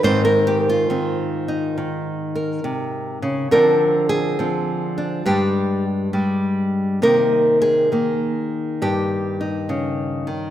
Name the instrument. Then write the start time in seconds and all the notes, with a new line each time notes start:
nylon-string guitar
0.03 G#2 D#3 C4 D#4 C5
0.25 A#4
0.47 G4
0.69 F4
0.90 D#3 C4
1.48 D#4
1.78 D#3
2.35 A#4
2.64 C3
3.22 C#3
3.51 D3 F3 C4 D4 A#4
4.09 G#4
4.39 F3 C4
4.98 D4
5.26 G2 G3 G#3 D4 G4
6.13 G3 G#3
7.02 C3 D#3 A#3 D#4 A#4
7.62 G#4
7.92 D#3 A#3
8.82 G2 G4
9.41 D#4
9.69 C#3
10.27 D#3